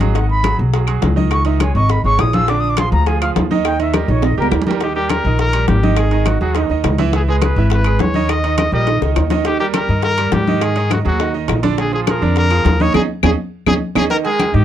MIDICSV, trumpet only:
0, 0, Header, 1, 2, 480
1, 0, Start_track
1, 0, Tempo, 290698
1, 254, Time_signature, 4, 2, 24, 8
1, 24183, End_track
2, 0, Start_track
2, 0, Title_t, "Trumpet"
2, 0, Program_c, 0, 56
2, 7965, Note_on_c, 0, 67, 90
2, 8177, Note_off_c, 0, 67, 0
2, 8184, Note_on_c, 0, 67, 96
2, 8420, Note_on_c, 0, 70, 95
2, 8445, Note_off_c, 0, 67, 0
2, 8900, Note_off_c, 0, 70, 0
2, 8917, Note_on_c, 0, 70, 105
2, 9355, Note_off_c, 0, 70, 0
2, 9380, Note_on_c, 0, 67, 84
2, 9868, Note_on_c, 0, 68, 93
2, 9893, Note_off_c, 0, 67, 0
2, 10361, Note_on_c, 0, 66, 76
2, 10385, Note_off_c, 0, 68, 0
2, 10589, Note_off_c, 0, 66, 0
2, 10596, Note_on_c, 0, 66, 69
2, 11033, Note_off_c, 0, 66, 0
2, 11818, Note_on_c, 0, 68, 80
2, 11916, Note_off_c, 0, 68, 0
2, 12051, Note_on_c, 0, 68, 81
2, 12151, Note_off_c, 0, 68, 0
2, 12286, Note_on_c, 0, 71, 79
2, 12718, Note_off_c, 0, 71, 0
2, 12774, Note_on_c, 0, 71, 89
2, 13224, Note_on_c, 0, 73, 93
2, 13248, Note_off_c, 0, 71, 0
2, 13704, Note_on_c, 0, 75, 107
2, 13729, Note_off_c, 0, 73, 0
2, 14164, Note_off_c, 0, 75, 0
2, 14174, Note_on_c, 0, 75, 96
2, 14396, Note_off_c, 0, 75, 0
2, 14426, Note_on_c, 0, 75, 97
2, 14866, Note_off_c, 0, 75, 0
2, 15620, Note_on_c, 0, 67, 101
2, 15839, Note_off_c, 0, 67, 0
2, 15853, Note_on_c, 0, 67, 97
2, 15961, Note_off_c, 0, 67, 0
2, 16090, Note_on_c, 0, 70, 93
2, 16537, Note_off_c, 0, 70, 0
2, 16574, Note_on_c, 0, 70, 113
2, 17060, Note_on_c, 0, 67, 95
2, 17085, Note_off_c, 0, 70, 0
2, 17543, Note_on_c, 0, 68, 90
2, 17568, Note_off_c, 0, 67, 0
2, 18018, Note_off_c, 0, 68, 0
2, 18034, Note_on_c, 0, 66, 68
2, 18137, Note_off_c, 0, 66, 0
2, 18283, Note_on_c, 0, 66, 82
2, 18715, Note_off_c, 0, 66, 0
2, 19484, Note_on_c, 0, 68, 90
2, 19692, Note_off_c, 0, 68, 0
2, 19713, Note_on_c, 0, 68, 79
2, 19817, Note_off_c, 0, 68, 0
2, 19973, Note_on_c, 0, 70, 85
2, 20400, Note_off_c, 0, 70, 0
2, 20448, Note_on_c, 0, 70, 111
2, 21161, Note_on_c, 0, 73, 103
2, 21186, Note_off_c, 0, 70, 0
2, 21373, Note_off_c, 0, 73, 0
2, 21383, Note_on_c, 0, 68, 91
2, 21495, Note_off_c, 0, 68, 0
2, 21856, Note_on_c, 0, 68, 87
2, 21970, Note_off_c, 0, 68, 0
2, 22577, Note_on_c, 0, 68, 104
2, 22690, Note_off_c, 0, 68, 0
2, 23071, Note_on_c, 0, 68, 94
2, 23180, Note_off_c, 0, 68, 0
2, 23285, Note_on_c, 0, 70, 111
2, 23394, Note_off_c, 0, 70, 0
2, 23525, Note_on_c, 0, 68, 107
2, 24020, Note_on_c, 0, 67, 93
2, 24045, Note_off_c, 0, 68, 0
2, 24183, Note_off_c, 0, 67, 0
2, 24183, End_track
0, 0, End_of_file